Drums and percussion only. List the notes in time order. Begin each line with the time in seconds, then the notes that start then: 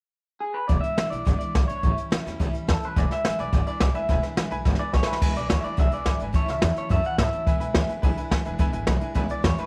0.69 kick, closed hi-hat
0.83 closed hi-hat
0.98 snare, closed hi-hat
1.13 closed hi-hat
1.27 kick, snare, closed hi-hat
1.41 closed hi-hat
1.55 kick, snare, closed hi-hat
1.69 closed hi-hat
1.83 kick, closed hi-hat
1.97 closed hi-hat
2.12 snare, closed hi-hat
2.27 snare, closed hi-hat
2.40 kick, closed hi-hat
2.55 closed hi-hat
2.68 kick, snare, closed hi-hat
2.83 closed hi-hat
2.96 kick, snare, closed hi-hat
3.11 snare, closed hi-hat
3.25 snare, closed hi-hat
3.39 closed hi-hat
3.53 kick, snare, closed hi-hat
3.67 closed hi-hat
3.80 kick, snare, closed hi-hat
3.95 closed hi-hat
4.09 kick, snare, closed hi-hat
4.23 snare, closed hi-hat
4.37 snare, closed hi-hat
4.51 closed hi-hat
4.65 kick, snare
4.75 snare
4.93 kick, snare
5.03 snare
5.13 snare
5.22 kick, crash
5.36 closed hi-hat
5.50 snare, closed hi-hat
5.64 closed hi-hat
5.78 kick, closed hi-hat
5.92 closed hi-hat
6.06 kick, snare, closed hi-hat
6.20 closed hi-hat
6.34 kick, closed hi-hat
6.48 snare, closed hi-hat
6.62 snare, closed hi-hat
6.76 closed hi-hat
6.90 kick, closed hi-hat
7.04 closed hi-hat
7.18 kick, snare, closed hi-hat
7.33 closed hi-hat
7.47 kick, closed hi-hat
7.61 closed hi-hat
7.74 snare, closed hi-hat
7.89 closed hi-hat
8.03 kick, closed hi-hat
8.17 closed hi-hat
8.31 kick, snare, closed hi-hat
8.45 closed hi-hat
8.59 kick, closed hi-hat
8.73 closed hi-hat
8.87 snare, closed hi-hat
9.01 closed hi-hat
9.15 kick, closed hi-hat
9.29 closed hi-hat
9.44 kick, snare, closed hi-hat
9.58 closed hi-hat